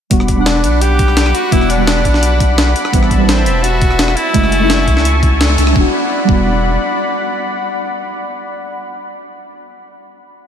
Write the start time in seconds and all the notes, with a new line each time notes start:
0.10 E1 G3 B3 D4 F#4 F#5 B5 D6, kick, closed hi-hat
0.20 cross-stick
0.28 kick, closed hi-hat
0.36 G3 B3 D4
0.41 F#5
0.46 D4, snare, closed hi-hat
0.64 B1, closed hi-hat
0.82 G4, closed hi-hat
0.99 kick, closed hi-hat
1.08 cross-stick
1.17 snare, closed hi-hat
1.26 cross-stick
1.35 F#4, closed hi-hat
1.51 E1 G3 B3 D4 E4 F#4, kick, closed hi-hat
1.61 cross-stick
1.70 D4, closed hi-hat
1.77 G3 B3 D4
1.82 F#4
1.87 snare, closed hi-hat
2.05 B1, kick, closed hi-hat
2.14 snare
2.23 closed hi-hat
2.40 kick, closed hi-hat
2.58 snare, closed hi-hat
2.76 closed hi-hat
2.85 cross-stick
2.92 A1 G3 B3 C4 E4 E5 A5, kick, closed hi-hat
3.03 cross-stick
3.11 kick, closed hi-hat
3.18 G3 C4 B4
3.23 E4
3.29 C4, snare, closed hi-hat
3.46 E1, closed hi-hat
3.63 F#4, closed hi-hat
3.81 kick, closed hi-hat
3.91 cross-stick
3.99 snare, closed hi-hat
4.08 cross-stick
4.16 E4, closed hi-hat
4.33 F#1 G#3 A3 C#4 E4 E5 G#5 A5 C#6, kick, closed hi-hat
4.44 cross-stick
4.52 closed hi-hat
4.59 G#3 A3 C#4
4.64 E4
4.70 snare, closed hi-hat
4.87 C#2, kick, closed hi-hat
4.97 snare
5.05 closed hi-hat
5.23 kick, closed hi-hat
5.41 snare, closed hi-hat
5.58 C#2, closed hi-hat
5.67 cross-stick
5.72 E1 G3 B3 D5 F#5 B5, kick
5.77 D4 F#4
6.25 G3 B3
6.29 E1 D4 F#4, kick